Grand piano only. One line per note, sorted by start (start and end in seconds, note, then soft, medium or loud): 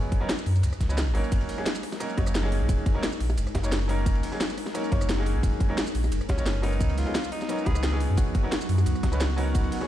0.00 0.18 F#3 loud
0.00 0.18 B3 medium
0.00 0.19 C#4 medium
0.00 0.19 D#4 medium
0.00 0.19 G#4 loud
0.20 0.28 F#3 loud
0.20 0.28 B3 medium
0.20 0.28 C#4 medium
0.20 0.28 D#4 medium
0.20 0.28 A#4 loud
0.89 0.97 F#3 medium
0.89 0.97 B3 medium
0.89 0.97 C#4 medium
0.89 0.97 D#4 medium
0.89 0.97 B4 loud
1.14 1.55 F#3 loud
1.14 1.56 A#3 medium
1.14 1.56 C#4 medium
1.14 1.56 D#4 medium
1.14 1.57 A#4 loud
1.58 1.65 F#3 medium
1.58 1.65 A#3 medium
1.58 1.65 C#4 medium
1.58 1.66 D#4 medium
1.58 1.66 G#4 loud
2.00 2.15 F#3 medium
2.00 2.16 A#3 medium
2.00 2.16 C#4 medium
2.00 2.16 D#4 medium
2.00 2.16 A#4 loud
2.17 2.30 F#3 medium
2.17 2.30 A#3 medium
2.17 2.30 C#4 medium
2.17 2.30 D#4 medium
2.17 2.31 C#5 medium
2.43 2.92 F#3 loud
2.43 2.93 A#3 medium
2.43 2.93 C#4 medium
2.43 2.93 D#4 medium
2.43 2.94 G#4 loud
2.95 3.02 F#3 loud
2.95 3.02 A#3 medium
2.95 3.02 C#4 medium
2.95 3.03 D#4 medium
2.95 3.03 A#4 loud
3.63 3.71 F#3 medium
3.63 3.71 A#3 medium
3.63 3.71 C#4 medium
3.63 3.71 D#4 medium
3.63 3.71 C#5 loud
3.88 4.30 F#3 loud
3.88 4.30 A#3 medium
3.88 4.30 C#4 medium
3.88 4.31 D#4 medium
3.88 4.31 A#4 loud
4.32 4.39 F#3 medium
4.32 4.39 A#3 medium
4.32 4.40 C#4 medium
4.32 4.40 D#4 medium
4.32 4.40 G#4 medium
4.74 4.90 F#3 medium
4.74 4.90 A#3 medium
4.74 4.90 C#4 medium
4.74 4.90 D#4 medium
4.74 4.90 A#4 loud
4.91 5.04 F#3 medium
4.91 5.04 A#3 medium
4.91 5.04 C#4 medium
4.91 5.05 D#4 medium
4.91 5.05 C#5 loud
5.17 5.67 F#3 loud
5.17 5.67 A#3 medium
5.17 5.67 C#4 medium
5.17 5.68 D#4 medium
5.17 5.68 G#4 loud
5.69 5.76 F#3 loud
5.69 5.77 A#3 medium
5.69 5.77 C#4 medium
5.69 5.77 D#4 medium
5.69 5.77 A#4 loud
6.37 6.45 F#3 loud
6.37 6.45 A#3 medium
6.37 6.45 C#4 medium
6.37 6.45 D#4 medium
6.37 6.46 C#5 loud
6.62 7.04 F#3 loud
6.62 7.04 B3 medium
6.62 7.05 C#4 medium
6.62 7.05 D#4 medium
6.62 7.05 A#4 loud
7.06 7.14 F#3 medium
7.06 7.14 B3 medium
7.06 7.14 C#4 medium
7.06 7.14 D#4 medium
7.06 7.14 G#4 medium
7.48 7.64 F#3 medium
7.48 7.64 B3 medium
7.48 7.64 C#4 medium
7.48 7.64 D#4 medium
7.48 7.65 A#4 loud
7.66 7.78 F#3 medium
7.66 7.79 B3 medium
7.66 7.79 C#4 medium
7.66 7.79 D#4 medium
7.66 7.79 B4 medium
7.91 8.41 F#3 loud
7.91 8.41 B3 medium
7.91 8.42 C#4 medium
7.91 8.42 D#4 medium
7.91 8.42 G#4 loud
8.43 8.51 F#3 medium
8.43 8.51 B3 medium
8.43 8.51 C#4 medium
8.43 8.51 D#4 medium
8.43 8.51 A#4 loud
9.12 9.19 F#3 medium
9.12 9.19 B3 medium
9.12 9.20 C#4 medium
9.12 9.20 D#4 medium
9.12 9.20 B4 loud
9.36 9.78 F#3 loud
9.36 9.79 B3 medium
9.36 9.79 C#4 medium
9.36 9.79 D#4 medium
9.36 9.79 A#4 loud
9.81 9.87 F#3 medium
9.81 9.87 B3 medium
9.81 9.87 C#4 medium
9.81 9.87 D#4 medium
9.81 9.87 G#4 medium